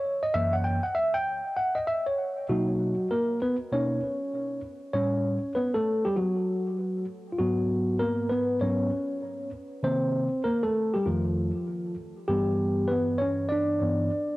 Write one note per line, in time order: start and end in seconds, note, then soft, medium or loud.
0.00 0.24 C#5 medium
0.23 0.35 D#5 loud
0.34 0.78 F#2 medium
0.34 0.79 E3 medium
0.34 0.79 A#3 medium
0.34 0.54 E5 loud
0.53 0.65 F#5 loud
0.64 0.85 G5 medium
0.83 0.96 F#5 medium
0.95 1.15 E5 loud
1.14 1.58 G5 loud
1.57 1.77 F#5 medium
1.75 1.87 D#5 medium
1.87 2.05 E5 medium
2.06 2.46 C#5 medium
2.49 2.93 B2 medium
2.49 3.07 F#3 medium
2.49 2.93 A#3 soft
2.49 2.94 D#4 medium
2.49 3.12 F#4 medium
3.11 3.40 A#3 medium
3.11 3.39 A#4 medium
3.42 3.56 B3 medium
3.42 3.55 B4 medium
3.72 4.00 B2 soft
3.72 4.00 A#3 soft
3.72 4.60 C#4 medium
3.72 4.00 D#4 soft
3.72 4.60 C#5 medium
4.93 5.38 A2 medium
4.93 5.38 G3 soft
4.93 5.52 C#4 medium
4.93 5.57 C#5 loud
5.55 5.74 B3 medium
5.55 5.75 B4 medium
5.74 6.03 A3 medium
5.74 6.06 A4 medium
6.05 6.16 G3 medium
6.05 6.16 G4 medium
6.16 7.05 F#3 medium
6.16 7.04 F#4 medium
7.32 7.38 F4 medium
7.39 8.60 G#2 medium
7.39 7.97 F#3 medium
7.39 8.30 B3 medium
7.39 8.02 F#4 medium
7.99 8.30 A#3 medium
7.99 8.31 A#4 medium
8.29 8.60 B3 medium
8.29 8.59 B4 medium
8.61 8.89 G#2 soft
8.61 8.89 F#3 soft
8.61 8.90 B3 soft
8.61 9.50 C#4 medium
8.61 9.49 C#5 medium
9.83 10.27 C3 soft
9.83 10.27 D#3 soft
9.83 10.28 A#3 medium
9.83 10.41 C4 medium
9.83 10.47 C5 medium
10.44 10.63 A#3 medium
10.44 10.62 A#4 medium
10.63 10.93 A3 medium
10.63 10.95 A4 medium
10.94 11.06 G3 medium
10.94 11.06 G4 medium
11.06 11.50 F2 soft
11.06 11.50 D#3 soft
11.06 11.95 F3 medium
11.06 11.50 A3 soft
11.06 11.94 F4 medium
12.28 13.80 G2 medium
12.28 13.81 E3 soft
12.28 12.87 G3 medium
12.28 12.90 B3 medium
12.28 12.91 G4 medium
12.88 13.19 B3 medium
12.88 13.17 B4 medium
13.18 13.50 C#4 medium
13.18 13.48 C#5 medium
13.49 14.37 D4 medium
13.49 14.37 D5 medium
13.82 14.09 G2 soft
13.82 14.09 E3 soft
13.82 14.10 B3 soft